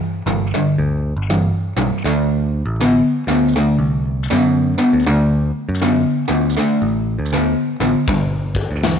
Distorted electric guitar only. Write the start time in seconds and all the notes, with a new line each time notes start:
Already playing: G2 E3
0.27 G2 E3
0.54 G2 D3
1.30 G2 E3
1.77 G2 E3
2.05 D3 A3
2.81 D3 B3
3.28 D3 B3
3.56 D3 A3
4.31 D3 B3
4.78 D3 B3
5.07 D3 A3
5.82 D3 B3
6.28 D3 B3
6.57 D3 A3
7.33 D3 B3
7.80 D3 B3
8.08 G2 D3
8.83 G2 E3